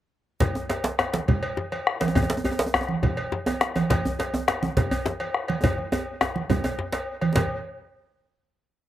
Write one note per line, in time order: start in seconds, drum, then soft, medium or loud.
0.40 bombo low medium
0.40 cowbell soft
0.40 djembe slap medium
0.40 low conga medium
0.40 djembe bass medium
0.55 djembe slap soft
0.55 djembe tone medium
0.69 cowbell medium
0.69 djembe slap medium
0.69 djembe tone medium
0.84 djembe slap loud
0.84 high conga soft
0.99 bombo rim medium
0.99 cowbell soft
0.99 djembe slap medium
0.99 djembe tone medium
1.14 djembe slap medium
1.14 high conga medium
1.28 bombo low medium
1.28 cowbell soft
1.28 low conga medium
1.28 djembe bass medium
1.43 cowbell medium
1.43 djembe slap soft
1.57 djembe slap medium
1.57 djembe tone medium
1.57 high conga soft
1.72 bombo rim soft
1.72 cowbell medium
1.72 high conga soft
1.87 bombo rim medium
1.87 djembe slap soft
2.01 cowbell soft
2.01 djembe slap medium
2.01 djembe slap soft
2.01 high conga medium
2.08 djembe tone medium
2.15 bombo low loud
2.15 cowbell medium
2.15 djembe slap medium
2.15 djembe bass medium
2.15 low conga medium
2.23 djembe tone medium
2.30 djembe slap medium
2.30 djembe slap soft
2.37 djembe tone medium
2.44 cowbell soft
2.44 djembe tone medium
2.44 djembe bass medium
2.51 djembe tone medium
2.59 djembe slap loud
2.59 high conga soft
2.66 djembe tone medium
2.74 bombo rim loud
2.74 cowbell soft
2.74 djembe slap medium
2.74 djembe bass medium
2.81 djembe tone medium
2.89 high conga medium
3.03 bombo low medium
3.03 cowbell soft
3.03 djembe bass medium
3.03 low conga medium
3.17 cowbell medium
3.17 djembe slap soft
3.32 djembe slap medium
3.32 djembe tone medium
3.32 high conga soft
3.46 bombo rim soft
3.46 cowbell medium
3.46 djembe tone medium
3.46 high conga soft
3.61 bombo rim medium
3.61 djembe slap medium
3.61 djembe slap soft
3.76 cowbell soft
3.76 djembe slap soft
3.76 djembe tone medium
3.76 high conga medium
3.90 bombo low medium
3.90 cowbell medium
3.90 djembe slap medium
3.90 djembe bass medium
3.90 low conga medium
4.05 djembe slap soft
4.05 djembe bass medium
4.19 cowbell medium
4.19 djembe slap medium
4.19 djembe tone medium
4.34 djembe tone medium
4.34 high conga soft
4.48 bombo rim medium
4.48 cowbell soft
4.48 djembe slap medium
4.63 djembe tone medium
4.63 high conga medium
4.77 bombo low medium
4.77 cowbell soft
4.77 djembe slap medium
4.77 low conga medium
4.77 djembe bass medium
4.91 cowbell medium
4.91 djembe slap soft
4.91 djembe bass medium
5.06 djembe slap medium
5.06 djembe tone medium
5.06 high conga soft
5.20 bombo rim soft
5.20 cowbell medium
5.20 high conga soft
5.34 bombo rim medium
5.34 djembe slap soft
5.48 cowbell soft
5.48 djembe slap soft
5.48 high conga medium
5.64 bombo low medium
5.64 cowbell medium
5.64 djembe slap medium
5.64 djembe tone medium
5.64 high conga soft
5.64 djembe bass medium
5.64 low conga medium
5.78 bombo rim soft
5.78 high conga soft
5.92 cowbell medium
5.92 djembe tone medium
6.21 bombo rim medium
6.21 cowbell soft
6.21 djembe slap medium
6.21 djembe tone medium
6.36 high conga medium
6.50 bombo low medium
6.50 cowbell soft
6.50 djembe tone medium
6.50 djembe bass medium
6.50 low conga medium
6.64 cowbell soft
6.64 djembe tone medium
6.79 djembe slap medium
6.79 djembe tone medium
6.93 cowbell soft
6.93 djembe slap medium
7.21 bombo rim soft
7.21 cowbell soft
7.21 high conga medium
7.35 bombo low medium
7.35 cowbell medium
7.35 djembe slap loud
7.35 djembe bass medium
7.35 low conga medium